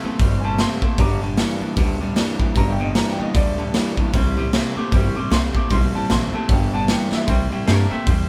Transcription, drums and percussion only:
0.20 kick loud
0.20 open hi-hat medium
0.59 snare loud
0.59 open hi-hat medium
0.82 kick medium
0.98 kick loud
0.98 open hi-hat soft
1.38 snare loud
1.38 open hi-hat medium
1.77 kick loud
1.77 open hi-hat medium
2.16 snare loud
2.16 open hi-hat medium
2.40 kick medium
2.56 kick loud
2.56 open hi-hat soft
2.95 snare loud
2.95 open hi-hat medium
3.35 kick loud
3.35 open hi-hat medium
3.74 snare loud
3.74 open hi-hat medium
3.97 kick medium
4.14 kick loud
4.14 open hi-hat soft
4.53 snare loud
4.53 open hi-hat medium
4.92 kick loud
4.92 open hi-hat medium
5.32 snare loud
5.32 open hi-hat medium
5.55 kick medium
5.71 kick loud
5.71 open hi-hat medium
6.10 snare loud
6.10 open hi-hat medium
6.49 kick loud
6.49 open hi-hat medium
6.88 snare loud
6.88 open hi-hat soft
7.12 snare medium
7.28 kick loud
7.28 open hi-hat medium
7.68 snare loud
7.68 open hi-hat medium
8.07 kick loud
8.07 open hi-hat medium

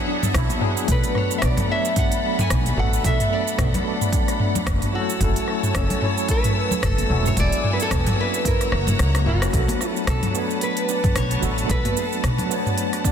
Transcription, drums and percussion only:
0.23 mid tom medium
0.23 low conga medium
0.23 shaker medium
0.34 kick loud
0.34 cross-stick loud
0.34 open hi-hat medium
0.34 shaker medium
0.49 open hi-hat soft
0.49 high conga medium
0.49 shaker soft
0.61 mid tom medium
0.77 shaker medium
0.88 kick loud
0.88 open hi-hat medium
0.88 shaker medium
1.03 open hi-hat soft
1.03 shaker soft
1.15 cross-stick soft
1.15 mid tom medium
1.31 shaker medium
1.42 kick loud
1.42 cross-stick loud
1.42 open hi-hat medium
1.42 shaker medium
1.57 mid tom medium
1.57 open hi-hat soft
1.57 low conga medium
1.57 shaker soft
1.85 shaker medium
1.96 kick loud
1.96 mid tom medium
1.96 open hi-hat medium
1.96 shaker medium
2.12 open hi-hat soft
2.12 shaker soft
2.39 mid tom medium
2.39 low conga medium
2.39 shaker medium
2.50 kick loud
2.50 cross-stick medium
2.50 open hi-hat medium
2.50 shaker medium
2.66 open hi-hat soft
2.66 high conga medium
2.66 shaker soft
2.78 mid tom medium
2.93 shaker medium
3.04 kick loud
3.04 open hi-hat medium
3.04 shaker medium
3.20 mid tom medium
3.20 open hi-hat soft
3.20 shaker soft
3.48 shaker medium
3.58 kick loud
3.58 cross-stick medium
3.58 mid tom medium
3.58 open hi-hat medium
3.58 shaker medium
3.74 open hi-hat soft
3.74 low conga medium
3.74 shaker soft
4.01 mid tom medium
4.01 shaker medium
4.12 kick loud
4.12 open hi-hat medium
4.12 shaker soft
4.28 cross-stick soft
4.28 open hi-hat soft
4.28 shaker soft
4.40 mid tom medium
4.55 low conga medium
4.55 shaker medium
4.67 kick loud
4.67 cross-stick loud
4.67 open hi-hat medium
4.67 shaker medium
4.82 mid tom medium
4.82 open hi-hat soft
4.82 high conga medium
4.82 shaker soft
5.10 shaker medium
5.21 kick loud
5.21 mid tom medium
5.21 open hi-hat medium
5.21 shaker soft
5.36 open hi-hat soft
5.36 shaker soft
5.48 cross-stick soft
5.63 mid tom medium
5.63 shaker medium
5.75 kick medium
5.75 cross-stick loud
5.75 open hi-hat medium
5.75 shaker medium
5.90 open hi-hat soft
5.90 low conga medium
5.90 shaker soft
6.02 mid tom medium
6.18 shaker medium
6.28 kick loud
6.28 open hi-hat medium
6.28 shaker soft
6.44 mid tom medium
6.44 open hi-hat soft
6.44 shaker soft
6.71 low conga medium
6.71 shaker medium
6.83 kick loud
6.83 cross-stick loud
6.83 mid tom medium
6.83 open hi-hat medium
6.83 shaker medium
6.98 open hi-hat soft
6.98 high conga medium
6.98 shaker soft
7.25 mid tom medium
7.25 shaker medium
7.37 kick loud
7.37 open hi-hat medium
7.37 shaker medium
7.52 open hi-hat soft
7.52 shaker soft
7.64 mid tom medium
7.80 open hi-hat soft
7.80 shaker medium
7.91 kick loud
7.91 cross-stick loud
7.91 open hi-hat medium
7.91 shaker medium
8.06 mid tom medium
8.06 open hi-hat soft
8.06 low conga loud
8.06 shaker soft
8.34 shaker medium
8.45 kick loud
8.45 mid tom medium
8.45 open hi-hat medium
8.45 shaker soft
8.61 cross-stick soft
8.61 open hi-hat soft
8.61 shaker soft
8.72 cross-stick medium
8.87 mid tom medium
8.87 open hi-hat soft
8.87 low conga medium
8.87 shaker medium
8.99 cross-stick medium
8.99 open hi-hat medium
8.99 shaker medium
9.14 cross-stick medium
9.14 open hi-hat soft
9.14 high conga medium
9.14 shaker soft
9.26 mid tom medium
9.42 cross-stick medium
9.42 open hi-hat soft
9.42 shaker medium
9.53 kick loud
9.53 open hi-hat medium
9.53 shaker soft
9.68 open hi-hat soft
9.68 high conga medium
9.81 cross-stick soft
9.81 shaker medium
9.96 shaker soft
10.07 cross-stick loud
10.07 open hi-hat medium
10.07 shaker soft
10.23 mid tom medium
10.23 open hi-hat soft
10.23 low conga medium
10.35 shaker medium
10.50 shaker soft
10.61 open hi-hat medium
10.61 shaker soft
10.77 open hi-hat soft
10.89 shaker medium
11.04 kick loud
11.04 mid tom medium
11.04 open hi-hat soft
11.04 low conga medium
11.04 shaker soft
11.16 cross-stick loud
11.16 open hi-hat medium
11.16 shaker soft
11.31 open hi-hat soft
11.43 shaker medium
11.58 open hi-hat soft
11.58 shaker soft
11.69 kick loud
11.69 open hi-hat medium
11.69 shaker soft
11.85 mid tom medium
11.85 open hi-hat soft
11.85 high conga medium
11.97 shaker medium
12.13 shaker soft
12.24 cross-stick loud
12.24 open hi-hat medium
12.24 shaker soft
12.38 open hi-hat soft
12.38 low conga medium
12.51 shaker medium
12.66 mid tom medium
12.66 shaker soft
12.78 open hi-hat medium
12.78 shaker soft
12.93 cross-stick soft
12.93 open hi-hat soft
13.04 kick loud
13.04 high conga medium
13.04 shaker medium

